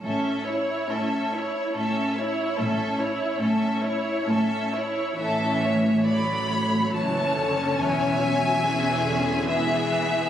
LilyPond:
<<
  \new Staff \with { instrumentName = "Violin section" } { \time 3/4 \key a \major \tempo 4 = 70 e''8 cis''8 e''8 cis''8 e''8 cis''8 | e''8 cis''8 e''8 cis''8 e''8 cis''8 | r4 b''4 a''4 | gis''2 e''4 | }
  \new Staff \with { instrumentName = "Violin section" } { \time 3/4 \key a \major << { a'8 cis''8 a'8 cis''8 a'8 cis''8 | a'8 cis''8 a'8 cis''8 a'8 cis''8 | e''4 d''8 cis''4. | e''2 e''4 | } \\ { r2. | r2. | a'8 cis''4. cis''4~ | cis''4 gis'4 gis'4 | } >> }
  \new Staff \with { instrumentName = "Viola section" } { \time 3/4 \key a \major << { cis'8 e'8 cis'8 e'8 cis'8 e'8 | cis'8 e'8 cis'8 e'8 cis'8 e'8 | e4 fis4 e8 d8 | e8 fis8 e8 d8 e4 | } \\ { r2. | r2. | cis'4 a4 cis'4~ | cis'4 cis'4 b4 | } >> }
  \new Staff \with { instrumentName = "Cello section" } { \clef bass \time 3/4 \key a \major a,4 a,4 a,4 | a,4 a,4 a,4 | a,2 fis,4 | e,2. | }
  \new Staff \with { instrumentName = "Double bass section" } { \clef bass \time 3/4 \key a \major a,,4 r2 | a,,4 r2 | a,,2 fis,,4 | e,,2. | }
>>